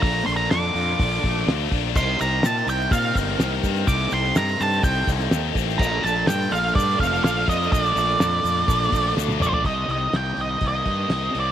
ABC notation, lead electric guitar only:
X:1
M:4/4
L:1/16
Q:1/4=125
K:Cdor
V:1 name="Lead electric guitar"
b2 c' b d'8- d'2 z2 | c'2 b2 a2 g2 f2 z6 | d'2 c'2 b2 a2 g2 z6 | b2 a2 g2 f2 d2 f2 f2 e2 |
d12 z2 d/2 c/2 d | e2 e2 g2 e2 e6 d2 |]